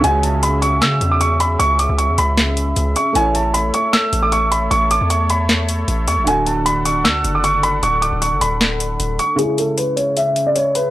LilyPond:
<<
  \new Staff \with { instrumentName = "Grand piano" } { \time 4/4 \key cis \phrygian \tempo 4 = 154 gis''8 a''8 b''8 cis'''8 e'''8. d'''16 cis'''8 b''8 | cis'''8 d'''8 cis'''8 b''2 cis'''8 | gis''8 a''8 b''8 cis'''8 e'''8. d'''16 cis'''8 b''8 | cis'''8 d'''8 cis'''8 b''2 cis'''8 |
gis''8 a''8 b''8 cis'''8 e'''8. d'''16 cis'''8 b''8 | cis'''8 d'''8 cis'''8 b''2 cis'''8 | gis'8 a'8 b'8 cis''8 e''8. d''16 cis''8 b'8 | }
  \new Staff \with { instrumentName = "Analog synth pad" } { \time 4/4 \key cis \phrygian << { e''1~ | e''1~ | e''1~ | e''1 |
fis''1~ | fis''1 | e''1 | } \\ { <cis cis' gis'>1~ | <cis cis' gis'>1 | <a a' cis''>1~ | <a a' cis''>1 |
<d d' a'>1~ | <d d' a'>1 | <cis cis' gis'>1 | } >> }
  \new Staff \with { instrumentName = "Felt piano" } { \time 4/4 \key cis \phrygian <cis gis fis'>1~ | <cis gis fis'>1 | <a e' cis''>1~ | <a e' cis''>1 |
<d a fis'>1~ | <d a fis'>1 | <cis gis e'>1 | }
  \new Staff \with { instrumentName = "808-style bass" } { \clef bass \time 4/4 \key cis \phrygian cis,2 cis8 e,4. | cis,8. cis,8 e,16 cis,4. cis,8 r8 | a,,4. r4 a,,4. | a,,8. e,2~ e,16 a,,8 e,16 a,,16 |
d,,2 d,8 fis,,4. | d,,8. d,,8 fis,,16 d,,4. d,,8 r8 | r1 | }
  \new DrumStaff \with { instrumentName = "Drums" } \drummode { \time 4/4 hh8 hh8 hh8 hh8 <hh sn>8 hh8 hh8 hh8 | hh8 hh8 hh8 hh8 <hh sn>8 hh8 hh8 hh8 | hh8 hh8 hh8 hh8 <hh sn>8 hh8 hh8 hh8 | hh8 hh8 hh8 hh8 <hh sn>8 hh8 hh8 hh8 |
hh8 hh8 hh8 hh8 <hh sn>8 hh8 hh8 hh8 | hh8 hh8 hh8 hh8 <hh sn>8 hh8 hh8 hh8 | hh8 hh8 hh8 hh8 hh8 hh8 hh8 hh8 | }
>>